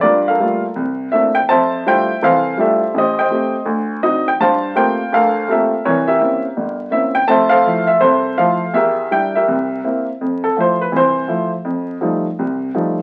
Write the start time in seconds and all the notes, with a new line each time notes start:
0.01 G2 F4 A#4 D5
0.28 A4 A#4 F5
0.40 G3 A3 A#3 F4
0.76 C2
1.12 A3 A#3 C4 D4 E4 E5
1.35 G5
1.49 F2 C5 E5 A5
1.86 G3 A3 D4 E4 F4 C5 E5 G5
2.22 C2 E3 A4 C5 F5
2.57 G3 A3 D4 E4 F4 G4 A4 E5
2.94 A1 G4
2.98 C5 D#5
3.19 C5 D#5 G5
3.30 A3 C4 G4
3.66 D2
4.03 C4 D4 D#4 F#4 D#5
4.28 G5
4.40 G2 C5 F5 A5
4.75 A3 A#3 C4 F4 G4 A#4 C5 G5
5.13 D2 A4 A#4 F5
5.48 A3 A#3 C4 F4 G4 A4 A#4 E5
5.85 C2 E3 E4 A#4 C#5
6.08 G4 A#4 E5
6.20 A#3 C4 C#4 E4
6.57 G1
6.91 A#3 C4 C#4 E4 E5
7.15 G5
7.28 F2 A3 C5 E5 A5
7.49 A4 C5 F5
7.65 F3 A3 E4
7.87 E5
8.01 C2 A4 C5 E5
8.38 F3 A3 E4 A4 C5 F5
8.74 E2 G4 A#4 E5
9.11 G3 D4 E4 G5
9.35 G4 A#4 E5
9.48 C2
9.84 A#3 C4 E4
10.21 F2
10.44 A4
10.57 F3 A3 E4 C5
10.81 B4
10.92 C2 E3
10.97 C5
11.28 F3 A3 E4
11.65 F2
12.01 F3 G3 A3 D#4
12.39 C2 C3
12.74 F3 G3 A3 D#4